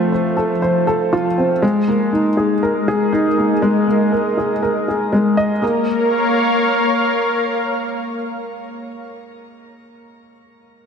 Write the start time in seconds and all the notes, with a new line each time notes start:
Already playing: F3 A3 C4 F4 A4 C5
0.12 C5
0.37 A4
0.62 C5
0.87 A4
1.13 F4
1.38 C4
1.62 G#3
1.83 G#4
1.88 A#3
2.13 D#4
2.20 A#4
2.26 D#5
2.37 G#4
2.63 A#4
2.88 G#4
3.13 D#4
3.38 A#3
3.62 G#3
3.87 A#3
4.12 A#4
4.37 G#4
4.62 A#4
4.88 G#4
5.13 G#3
5.37 D#5
5.62 A#3
5.70 A#4
5.76 C#5
5.84 F5